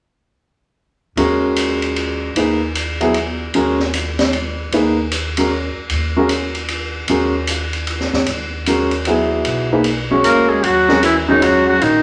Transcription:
1.16 2.31 D#2 medium
1.16 2.27 G#3 medium
1.16 2.27 C#4 medium
1.16 2.27 F#4 medium
1.16 2.27 A#4 medium
1.16 ride soft
1.56 hi-hat pedal soft
1.56 ride medium
1.82 ride soft
1.96 ride soft
2.35 3.49 D#2 medium
2.35 2.59 A#3 soft
2.35 2.59 D#4 soft
2.35 2.59 G#4 soft
2.35 2.59 B4 soft
2.35 ride soft
2.75 hi-hat pedal soft
2.75 ride soft
3.01 3.13 F#3 medium
3.01 3.13 B3 soft
3.01 3.13 E4 soft
3.01 3.14 G#4 medium
3.01 ride soft
3.14 ride soft
3.53 4.68 D#2 medium
3.53 3.77 G#3 medium
3.53 3.77 C#4 soft
3.53 3.77 F#4 soft
3.53 3.77 A#4 medium
3.53 ride soft
3.79 snare soft
3.94 hi-hat pedal soft
3.94 ride soft
4.19 snare soft
4.19 ride soft
4.33 ride soft
4.72 5.72 D#2 medium
4.72 4.95 A#3 soft
4.72 4.96 D#4 soft
4.72 4.96 G#4 soft
4.72 4.96 B4 medium
4.72 ride soft
5.12 hi-hat pedal soft
5.12 ride medium
5.37 5.50 G#3 soft
5.37 5.50 C#4 soft
5.37 5.50 F#4 soft
5.37 5.51 A#4 medium
5.37 ride medium
5.75 muted upright bass stroke soft
5.89 7.04 D#2 medium
5.89 ride soft
6.16 6.29 G#3 medium
6.16 6.29 C#4 medium
6.16 6.29 F#4 medium
6.16 6.29 A#4 medium
6.29 hi-hat pedal soft
6.29 ride medium
6.55 ride soft
6.68 ride soft
7.07 8.08 D#2 medium
7.07 7.32 G#3 medium
7.07 7.32 C#4 soft
7.07 7.32 F#4 soft
7.07 7.32 A#4 medium
7.07 ride soft
7.47 hi-hat pedal soft
7.47 ride medium
7.73 ride soft
7.87 ride soft
8.00 snare soft
8.12 8.26 E2 medium
8.12 snare soft
8.26 9.41 D#2 medium
8.26 ride soft
8.66 8.90 G#3 soft
8.66 8.90 C#4 soft
8.66 8.90 F#4 soft
8.66 8.90 A#4 medium
8.66 hi-hat pedal soft
8.66 ride medium
8.91 ride soft
9.05 9.66 F#3 soft
9.05 9.66 B3 soft
9.05 9.66 E4 soft
9.05 9.66 G#4 medium
9.05 ride soft
9.45 10.20 B1 medium
9.45 ride soft
9.72 9.84 A#3 medium
9.72 9.84 D#4 soft
9.72 9.84 G#4 soft
9.72 9.84 B4 medium
9.84 ride medium
10.11 10.61 G#3 medium
10.11 10.61 C#4 medium
10.11 10.61 F#4 medium
10.11 10.61 C#5 medium
10.24 10.60 D2 medium
10.24 10.52 A#3 medium
10.24 10.50 A#4 medium
10.24 hi-hat pedal medium
10.24 ride medium
10.49 10.65 G#3 medium
10.49 10.65 G#4 medium
10.63 11.77 D#2 medium
10.63 11.02 F#3 medium
10.63 11.03 F#4 medium
10.63 ride soft
10.89 11.01 G#3 medium
10.89 11.01 C#4 medium
10.89 11.01 F#4 medium
10.89 11.01 A#4 medium
10.89 snare soft
11.03 11.14 E3 medium
11.03 11.15 E4 medium
11.03 hi-hat pedal soft
11.03 ride medium
11.28 11.44 D#3 medium
11.28 11.79 G#3 medium
11.28 11.79 C#4 medium
11.28 11.44 D#4 medium
11.28 11.79 F#4 medium
11.28 11.79 C#5 medium
11.42 11.67 F#3 medium
11.42 11.68 F#4 medium
11.42 ride soft
11.68 11.83 F#3 medium
11.68 11.84 F#4 medium
11.81 12.03 A#1 medium
11.81 12.03 D#3 medium
11.81 12.03 D#4 medium
11.81 ride soft

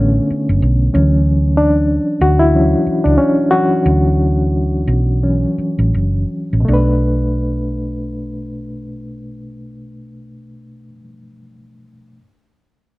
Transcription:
0.00 0.18 A1 medium
0.00 0.95 D3 medium
0.00 0.95 A3 medium
0.00 0.95 B3 medium
0.00 0.94 C#4 medium
0.30 muted fingered electric bass stroke soft
0.49 0.60 F#1 medium
0.62 0.88 B1 loud
0.93 1.98 D2 loud
0.93 1.37 E3 medium
0.93 1.38 F#3 soft
0.93 1.38 C#4 medium
1.57 2.23 D4 medium
2.21 2.74 D2 medium
2.21 2.40 F#4 loud
2.39 3.06 E4 loud
2.54 2.83 E3 medium
2.54 2.83 F#3 soft
2.54 2.83 C#4 medium
2.87 muted fingered electric bass stroke soft
3.04 3.16 C#2 medium
3.04 3.19 D4 medium
3.18 3.51 C#4 medium
3.51 5.22 E3 medium
3.51 5.22 F#3 medium
3.51 5.22 C#4 medium
3.51 5.89 F#4 medium
3.86 4.84 D2 medium
4.88 5.44 B1 medium
5.23 5.54 E3 soft
5.23 5.55 F#3 soft
5.23 5.55 C#4 medium
5.58 muted fingered electric bass stroke soft
5.79 5.91 A1 medium
5.94 6.24 F#1 medium
6.53 6.65 A1 medium
6.60 10.87 B2 medium
6.65 10.95 B1 medium
6.65 10.91 A3 medium
6.69 10.96 D4 medium
6.74 11.00 B4 medium

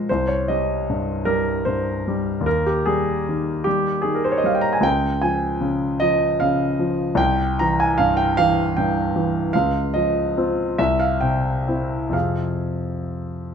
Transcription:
0.00 0.11 F3 soft
0.00 0.11 G#3 soft
0.00 0.10 A#4 medium
0.00 0.09 C5 medium
0.00 0.11 C#5 medium
0.09 2.43 C2 soft
0.09 0.28 C5 medium
0.28 0.48 C#5 medium
0.48 1.12 G3 soft
0.48 1.27 D#5 medium
0.90 1.52 G2 soft
1.25 1.89 G3 soft
1.25 1.65 A#4 medium
1.65 2.30 G2 soft
1.65 2.45 C5 medium
2.08 2.47 G3 soft
2.41 4.78 D#2 medium
2.46 2.66 A#4 medium
2.66 2.86 G4 medium
2.86 3.51 G3 soft
2.86 3.66 G#4 medium
3.29 3.91 D#3 soft
3.64 4.29 G3 soft
3.64 4.01 G4 medium
4.02 4.68 D#3 soft
4.02 4.15 G#4 medium
4.15 4.26 A#4 soft
4.24 4.34 C5 medium
4.32 4.40 C#5 medium
4.38 4.47 D#5 medium
4.44 4.84 G3 soft
4.44 4.55 F5 medium
4.55 4.64 G5 medium
4.61 4.73 A#5 medium
4.73 4.83 G#5 medium
4.81 7.13 C#2 medium
4.81 5.22 G5 medium
5.21 5.85 F3 soft
5.21 6.00 G#5 medium
5.61 6.24 C#3 soft
6.00 6.64 F3 soft
6.00 6.40 D#5 medium
6.40 7.04 C#3 soft
6.40 7.19 F5 medium
6.79 7.19 F3 soft
7.15 9.46 C2 medium
7.15 7.58 G5 medium
7.59 8.22 E3 soft
7.59 7.79 A#5 medium
7.80 7.99 G#5 medium
7.98 8.60 G2 medium
7.98 8.17 F5 medium
8.17 8.36 G5 medium
8.37 8.99 E3 medium
8.37 8.75 F5 medium
8.77 9.38 G2 soft
8.77 9.53 G5 medium
9.16 9.54 E3 soft
9.53 10.75 C#2 medium
9.53 9.94 F5 medium
9.94 10.62 F3 soft
9.94 10.78 D#5 medium
10.37 10.75 C4 soft
10.37 10.75 F4 soft
10.78 12.10 C2 medium
10.78 11.00 E5 medium
11.00 11.21 F5 medium
11.21 11.95 C3 soft
11.21 12.13 G5 medium
11.68 12.10 C4 soft
11.68 12.10 E4 soft
12.09 13.54 F2 soft
12.09 13.54 C3 soft
12.09 13.54 C4 soft
12.09 13.54 G#4 soft
12.09 13.54 F5 medium

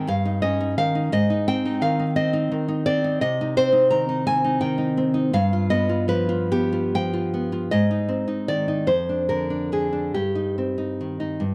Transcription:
0.07 0.77 G2 medium
0.07 0.41 F5 loud
0.25 0.59 D#4 medium
0.42 1.13 C#4 medium
0.42 0.76 D#5 medium
0.61 0.94 D#4 medium
0.78 1.12 D#3 medium
0.78 1.11 F5 loud
0.95 1.13 D#4 medium
1.12 1.81 G#2 medium
1.12 1.46 D#5 loud
1.30 1.64 D#4 medium
1.48 2.15 C4 medium
1.48 1.81 G5 loud
1.65 1.98 D#4 medium
1.81 2.50 D#3 medium
1.81 2.15 F5 medium
1.99 2.32 D#4 medium
2.16 2.85 C4 medium
2.16 2.50 D#5 loud
2.33 2.67 D#4 medium
2.52 3.22 D#3 medium
2.68 3.03 D#4 medium
2.86 3.22 C4 medium
2.86 3.20 D5 loud
3.04 3.22 D#4 medium
3.21 5.31 C3 medium
3.21 3.55 D#5 loud
3.41 3.71 D#4 medium
3.57 4.08 C4 medium
3.57 3.90 C5 loud
3.73 4.08 D#4 medium
3.90 4.60 D#3 medium
3.90 4.25 A#5 loud
4.09 4.43 D#4 medium
4.27 4.96 C4 medium
4.27 4.60 G#5 loud
4.44 4.77 D#4 medium
4.61 5.34 D#3 medium
4.61 5.31 G5 loud
4.78 5.13 D#4 medium
4.97 5.35 C4 medium
5.14 5.34 D#4 medium
5.33 7.68 G2 medium
5.33 5.70 F5 loud
5.53 5.88 F4 medium
5.70 6.50 B3 medium
5.70 6.08 D#5 loud
5.89 6.28 F4 medium
6.08 6.94 F3 medium
6.08 6.51 B4 loud
6.29 6.71 F4 medium
6.51 7.32 B3 medium
6.51 6.93 G4 loud
6.72 7.12 F4 medium
6.95 7.72 F3 medium
6.95 7.69 G5 loud
7.13 7.51 F4 medium
7.34 7.72 B3 medium
7.52 7.72 F4 medium
7.71 8.85 G#2 medium
7.71 8.44 D#5 loud
7.91 8.26 D#4 medium
8.09 8.88 C4 medium
8.28 8.67 D#4 medium
8.48 8.89 D#3 medium
8.48 8.87 D5 loud
8.68 8.89 D#4 medium
8.87 10.10 F2 medium
8.87 9.28 C5 medium
9.09 9.49 D4 medium
9.29 9.71 D3 medium
9.29 9.70 A#4 medium
9.50 9.91 D4 medium
9.72 10.15 D3 medium
9.72 10.13 G#4 medium
9.93 10.14 D4 medium
10.14 11.39 G2 medium
10.14 11.54 G4 medium
10.35 10.77 D#4 medium
10.58 11.44 C4 medium
10.78 11.19 D#4 medium
11.01 11.43 D#3 soft
11.20 11.42 D#4 medium
11.40 11.54 G2 medium

